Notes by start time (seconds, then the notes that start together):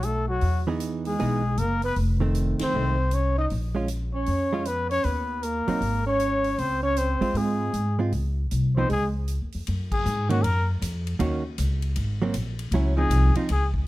Already playing: B1
0.03 A3 A4, closed hi-hat
0.28 F#3 F#4
0.41 E2, open hi-hat
0.67 E3 B3 D#4 G#4
0.80 closed hi-hat
1.05 G#3 G#4, open hi-hat
1.19 B1 E3 B3 D#4 G#4, open hi-hat
1.57 F#1 A#3 A#4, closed hi-hat
1.82 B3 B4, open hi-hat
1.96 F1, open hi-hat
2.20 D#3 A3 C4
2.35 closed hi-hat
2.59 C4 C5, snare, ride
2.74 C2 D#3 A3 C4
3.11 C#4 C#5, closed hi-hat
3.38 D#4 D#5
3.50 A#1, open hi-hat
3.75 G#3 C#4 F4
3.88 closed hi-hat
4.15 C#4 C#5
4.26 F2, open hi-hat
4.53 G#3 C#4 F4
4.65 B3 B4, closed hi-hat
4.90 C#4 C#5, open hi-hat
5.04 D#2 B3 B4, open hi-hat
5.43 A#3 A#4, closed hi-hat
5.68 F#3 C4 D#4, muted upright bass stroke, open hi-hat
5.81 G#1, open hi-hat
6.06 C#4 C#5
6.20 closed hi-hat
6.44 open hi-hat
6.58 C#2 C4 C5, open hi-hat
6.82 C#4 C#5
6.96 C4 C5, closed hi-hat
7.21 G#3 C4 F4, kick, open hi-hat
7.34 G#2 G#3 G#4, open hi-hat
7.73 G#2, closed hi-hat
7.99 G#3 C4 F4
8.12 C#2, open hi-hat
8.51 C2, closed hi-hat
8.77 F3 B3 C4 D#4 C5
8.89 C#2 G#3 G#4, open hi-hat
9.28 closed hi-hat
9.42 D#2
9.52 F2, open hi-hat
9.67 F#2, ride
9.92 G#4, kick, crash
10.05 G#2, hi-hat pedal
10.29 D#3 A#3 C#4 F#4, ride
10.44 F#2 A#4, ride
10.82 F2, hi-hat pedal, ride
11.07 ride
11.19 D#2 D#3 A#3 C#4 F#4, ride
11.58 C#2, hi-hat pedal, ride
11.82 ride
11.96 G#1, ride
12.22 F#3 A#3 C4
12.34 A#1, hi-hat pedal, ride
12.59 ride
12.71 C#2 F#3 C#4 E4, ride
12.97 F3 C4 D#4 G#4
13.10 C2, hi-hat pedal, ride
13.35 F3 C4 D#4 F4, ride
13.49 C#2 G#4, ride
13.74 kick